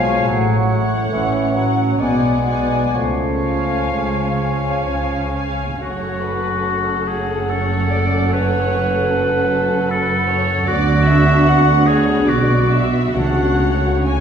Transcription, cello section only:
Already playing: B2
0.29 A2
1.13 A2
2.00 B2
2.96 C#3
3.93 C#3
4.87 C#3
5.80 F#2
10.68 D3
12.29 B2
13.16 C#3

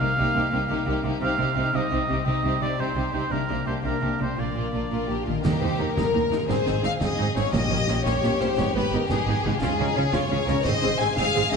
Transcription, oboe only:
Already playing: F5
1.23 F5
1.76 D#5
2.26 D#5
2.62 D5
2.80 C5
3.14 C5
3.32 A#4
3.67 C5
3.85 A#4
4.22 C5
4.40 D5

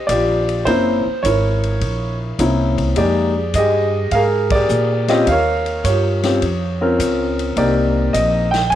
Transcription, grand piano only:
Already playing: C5
0.07 F4 G4 D5
0.65 A#3 C4 C#4 E4 C5
1.23 E4 A#4 C#5
2.39 A#3 C4 C#4 E4
2.96 G#3 A#3 D#4 G4 G#4 D5
3.55 G4 G#4 D#5
4.12 G#4 A#4 F5
4.52 G4 G#4 D5
5.09 C4 C#4 F4 G4 D#5
5.28 A#4 C#5 F5
5.85 F4 G4 C#5
6.24 C4 C#4 F4 G4
6.81 C4 C#4 F4 A#4
7.57 A#3 C4 D#4 G4 A#4 D5
8.13 D#5
8.51 G5
8.70 G#5

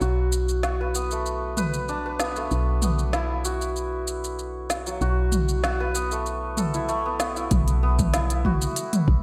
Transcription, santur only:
Already playing: F#3 A3 B3 D4 E4
0.01 F#4
0.64 F#4
0.81 B4
0.95 B3
1.12 A3
1.58 B4
1.89 D4
2.06 B4
2.21 B3
2.37 A3
2.83 B3
3.14 E4
3.45 F#4
4.87 F#3
5.01 F#4
5.64 F#4
5.80 B4
5.95 B3
6.12 A3
6.58 A4
6.74 E4
6.89 A3
7.06 B3
7.20 B3
7.37 E4
7.83 B3
8.14 E4
8.46 F#4

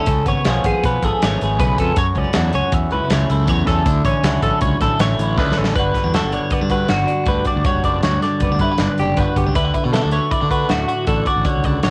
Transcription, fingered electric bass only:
0.07 C#2
0.26 G#1
0.47 B1
0.64 G#1
0.84 B1
1.03 G#1
1.23 G#1
1.42 G#1
1.59 B1
1.79 F2
1.97 F#2
2.16 C#2
2.36 E2
2.54 C#2
2.72 E2
2.92 C#2
3.11 C#2
3.30 C#2
3.48 E2
3.67 E2
3.86 D2
4.05 A1
4.23 C#2
4.42 A1
4.62 C#2
4.81 A1
5.00 A1
5.18 A1
5.38 C#2
5.57 A1
5.75 G1
6.04 E2
6.23 G1
6.62 G2
6.90 G1
7.26 D2
7.56 D2
7.74 F#1
7.84 F#1
8.04 D2
8.41 F#1
8.51 D2
8.59 G2
8.80 G1
8.99 F#1
9.17 G1
9.36 G1
9.47 C#2
9.55 D2
9.85 B2
10.05 D2
10.42 D3
10.70 D2
11.07 A1
11.36 A1
11.56 C#2
11.64 C#2
11.84 A1

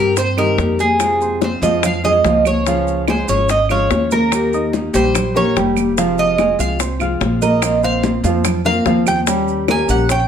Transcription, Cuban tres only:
Already playing: A#4
0.19 C5
0.38 A#4
0.80 G#4
1.44 C5
1.63 D#5
1.85 F5
2.05 D#5
2.47 C#5
3.10 C5
3.29 C#5
3.50 D#5
3.71 C#5
4.12 A#4
4.95 C5
5.37 C#5
6.19 D#5
6.60 F5
7.42 D#5
7.84 F5
8.66 F5
9.08 G5
9.71 G#5
9.90 F#5
10.11 G5

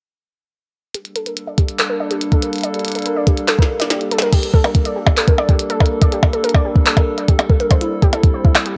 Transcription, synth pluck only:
0.95 G4
1.16 A4
1.26 A#4
1.47 D5
1.58 G4
1.79 A4
1.90 A#4
2.00 D5
2.11 G4
2.32 A4
2.42 A#4
2.64 D5
2.74 G4
2.95 A4
3.06 A#4
3.16 D5
3.27 G4
3.48 A4
3.59 A#4
3.80 D5
3.90 G4
4.12 A4
4.22 A#4
4.33 G4
4.54 A4
4.64 A#4
4.85 D5
4.96 G4
5.17 A4
5.28 A#4
5.38 D5
5.49 G4
5.70 A4
5.80 A#4
6.02 D5
6.12 G4
6.33 A4
6.44 A#4
6.54 D5
6.65 G4
6.86 A4
6.97 A#4
7.18 D5
7.28 G4
7.50 A4
7.60 A#4
7.71 C5
7.81 E4
8.02 G4
8.13 A4
8.34 C5
8.45 E4
8.66 G4

